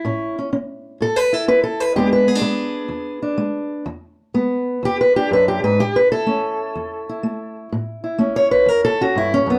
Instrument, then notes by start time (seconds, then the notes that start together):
steel-string acoustic guitar
Already playing: E4
0.05 A2 C#4
0.39 C#4
0.53 C#4
1.00 A2 A4
1.16 B4
1.33 E4 A4
1.48 C#4 B4
1.63 A4
1.80 B4
1.95 E2 G#3 B3 D4 G4
2.13 B4
2.27 B3 G#4
2.35 D4
2.41 G#3 B3
2.88 E2
3.22 D4
3.38 G#3
3.86 E2
4.34 G#3 B3
4.83 E2 G4
5.01 B4
5.16 D4 G4
5.31 F#2 B4
5.48 G4
5.64 G#2 B4
5.80 A2 G4
5.96 B4
6.12 E4 A4
6.26 A3 C#4
6.75 E2
7.09 E4
7.23 A3
7.72 A2
8.04 E4
8.18 A3 C#4
8.36 C#5
8.51 B4
8.66 E2 A#4
8.85 A4
9.01 C#4 F#4
9.15 G2 E4
9.34 C#4
9.46 F#2 B3